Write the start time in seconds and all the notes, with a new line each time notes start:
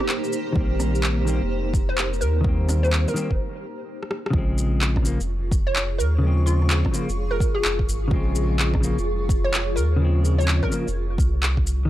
Already playing: A#3 D#4 G4 A#4 C5
0.00 G4, cross-stick
0.09 clap
0.24 shaker
0.33 shaker
0.53 A#1 D#3 G3, kick
0.58 A#3 C4
0.80 cross-stick, shaker
0.95 shaker
1.03 clap
1.25 D#3 G3 A#3, shaker
1.29 C4
1.42 F1
1.74 F1, kick, shaker
1.89 C5
1.98 clap
2.13 shaker
2.21 D#2 A#4, shaker
2.41 D#3 G3, kick
2.46 A#3 C4
2.69 cross-stick, shaker
2.83 C5, shaker
2.93 clap
3.08 A#4, shaker
3.14 D#3 G3 A#3 C4, shaker
3.31 F1, kick
4.03 cross-stick
4.11 cross-stick
4.26 cross-stick
4.30 A#1 C#3 F3, kick
4.36 G#3 C4
4.58 F4, shaker
4.72 G#4
4.82 clap
4.90 C#6
4.96 kick, cross-stick
5.02 C#3 F3, shaker
5.07 A#3
5.20 F1, shaker
5.51 F1, kick, shaker
5.67 C#5
5.76 clap
5.98 D#2 A#4, shaker
6.19 C#3 F3
6.24 G#3 C4
6.46 F4, shaker
6.62 cross-stick
6.70 clap
6.85 kick, cross-stick
6.91 C#3 F3 A#3, shaker
7.09 F1, shaker
7.31 A#4
7.40 kick, shaker
7.55 G#4
7.65 F1, clap
7.79 kick
7.88 G#1, shaker
8.08 A#1 C#3 F3, kick
8.13 G#3 C4
8.35 shaker
8.59 clap
8.74 kick, cross-stick
8.80 C#3 F3, shaker
8.84 A#3
8.98 F1, shaker
9.29 F1, kick, shaker
9.44 C#5
9.54 clap
9.76 D#2 A#4, shaker
9.96 C#3 F3
10.02 G#3 C4
10.25 shaker
10.38 C#5, cross-stick, shaker
10.48 clap
10.63 A#4, kick, cross-stick
10.69 C#3 F3, shaker
10.74 A#3
10.87 F1, shaker
11.18 C2, kick, shaker
11.43 clap
11.57 kick
11.67 shaker
11.85 D#3